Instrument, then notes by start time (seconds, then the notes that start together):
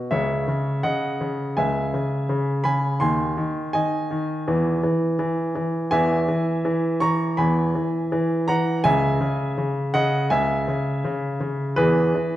grand piano
Already playing: B2
0.11 C#2 C#3 C#5 E5
0.48 C#3
0.83 C#3 D#5 F#5
1.21 C#3
1.57 C#2 C#3 E5 G#5
1.94 C#3
2.29 C#3
2.64 C#3 G#5 B5
3.00 D#2 D#3 G#5 C6
3.37 D#3
3.73 D#3 D#5 G#5
4.11 D#3
4.48 E2 E3
4.83 E3
5.19 E3
5.55 E3
5.91 E2 E3 E5 G#5
6.28 E3
6.65 E3
7.00 E3 A#5 C#6
7.37 E2 E3 G#5 B5
7.75 E3
8.12 E3
8.48 E3 F#5 A#5
8.84 C#2 C#3 E5 G#5
9.21 C#3
9.58 C#3
9.94 C#3 D#5 F#5
10.30 C#2 C#3 E5 G#5
10.68 C#3
11.04 C#3
11.40 C#3
11.76 E2 E3 G#4 B4
12.15 E3